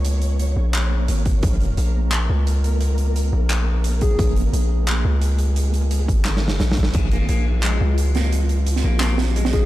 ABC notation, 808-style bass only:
X:1
M:4/4
L:1/8
Q:"Swing 16ths" 1/4=174
K:Bbm
V:1 name="808-style bass" clef=bass
D,,3 B,,,3 A,,,2 | B,,,2 B,,,3 D,,3- | D,,3 B,,,4- B,,, | B,,,2 B,,,3 D,,3- |
D,,3 A,,,3 B,,,2 | B,,,2 B,,,3 D,,3- | D,,3 B,,,4- B,,, |]